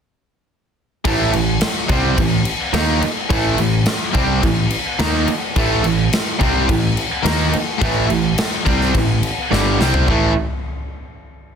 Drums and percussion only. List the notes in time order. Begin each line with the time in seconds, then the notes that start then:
1.05 kick, crash
1.33 crash
1.61 snare, crash
1.89 kick, crash
2.18 kick, crash
2.45 crash
2.74 snare, crash
3.02 crash
3.30 kick, crash
3.58 crash
3.86 snare, crash
4.15 kick, crash
4.43 kick, crash
4.71 crash
4.99 snare, crash
5.28 crash
5.56 kick, crash
5.84 crash
6.13 snare, crash
6.41 kick, crash
6.69 kick, crash
6.97 crash
7.26 snare, crash
7.53 crash
7.81 kick, crash
8.10 crash
8.38 snare, crash
8.66 kick, crash
8.81 snare
8.95 kick, crash
9.23 crash
9.53 snare
9.81 snare
9.94 floor tom
10.08 kick